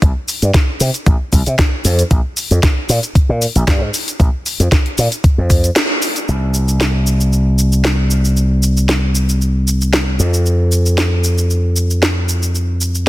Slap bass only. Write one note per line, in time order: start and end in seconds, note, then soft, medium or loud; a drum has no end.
0.02 0.11 C2 loud
0.42 0.50 G2 medium
0.80 0.89 C3 medium
1.07 1.15 A#1 medium
1.33 1.41 C2 medium
1.47 1.54 C3 medium
1.85 2.02 F2 loud
2.11 2.20 A#1 loud
2.51 2.59 F2 medium
2.89 2.98 A#2 medium
3.15 muted slap bass stroke soft
3.29 3.45 A#2 loud
3.55 3.63 A#1 medium
3.68 3.81 G2 loud
3.81 3.89 G#2 medium
4.20 4.28 A#1 loud
4.60 4.67 F2 medium
4.98 5.07 A#2 medium
5.38 5.69 F2 medium
6.28 10.17 C2 medium
10.19 13.09 F2 medium